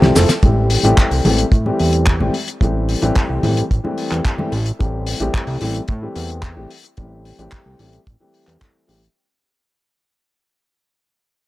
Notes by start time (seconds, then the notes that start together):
Already playing: F3 A3 C4 E4 G4 C5 D5 A5
0.02 C2, snare, high conga, low conga
0.15 F1 F3 A3 C4 E4 A4, snare, open hi-hat, shaker
0.29 snare, closed hi-hat, shaker
0.43 A1 E3 G3 A3 C4 G4, kick, closed hi-hat, high conga
0.70 open hi-hat
0.84 A1 E3 G3 A3 C4 G4, closed hi-hat, high conga
0.98 kick, clap, closed hi-hat
1.11 C2, open hi-hat
1.25 A1 E3 G3 A3 C4 G4, open hi-hat, high conga, low conga
1.38 closed hi-hat
1.52 A2, kick, closed hi-hat
1.65 E3 G3 A3 C4 G4, high conga
1.79 E2, open hi-hat
1.93 closed hi-hat
2.06 kick, clap, closed hi-hat
2.20 A1 E3 G3 A3 C4 G4, high conga, low conga
2.34 open hi-hat
2.48 closed hi-hat
2.61 A1 E3 G3 A3 C4 G4, kick, closed hi-hat, high conga
2.89 open hi-hat
3.02 A1 E3 G3 A3 C4 G4, closed hi-hat, high conga
3.15 kick, clap, closed hi-hat
3.30 C2
3.43 A1 E3 G3 A3 C4 G4, open hi-hat, high conga, low conga
3.57 closed hi-hat
3.71 A1, kick, closed hi-hat
3.84 E3 G3 A3 C4 G4, high conga
3.98 open hi-hat
4.11 E2, clap, closed hi-hat
4.25 kick, clap, closed hi-hat
4.38 E3 G3 A3 C4 G4, high conga, low conga
4.52 A1, open hi-hat
4.66 closed hi-hat
4.79 A1 E3 G3 A3 C4 G4, kick, closed hi-hat
5.07 open hi-hat
5.20 A1 E3 G3 A3 C4 G4, closed hi-hat
5.34 kick, clap, closed hi-hat
5.47 C2, open hi-hat
5.61 A1 E3 G3 A3 C4 G4, open hi-hat
5.75 closed hi-hat
5.88 A2, kick, closed hi-hat
6.02 E3 G3 A3 C4 G4
6.16 E2, open hi-hat
6.30 closed hi-hat
6.43 kick, clap, closed hi-hat
6.56 A1 E3 G3 A3 C4 G4
6.70 open hi-hat
6.84 closed hi-hat
6.97 A1 E3 G3 A3 C4 G4, kick, closed hi-hat
7.25 open hi-hat
7.39 A1 E3 G3 A3 C4 G4, closed hi-hat
7.52 kick, clap, closed hi-hat
7.66 C2
7.79 A1 E3 G3 A3 C4 G4, open hi-hat
7.93 closed hi-hat
8.07 A1, kick, closed hi-hat
8.20 E3 G3 A3 C4 G4
8.34 open hi-hat
8.47 E2, clap, closed hi-hat
8.61 E3 G3 A3 C4 E4, kick, clap, closed hi-hat
8.88 A1 E3 G3 A3 C4 G4, open hi-hat
9.03 closed hi-hat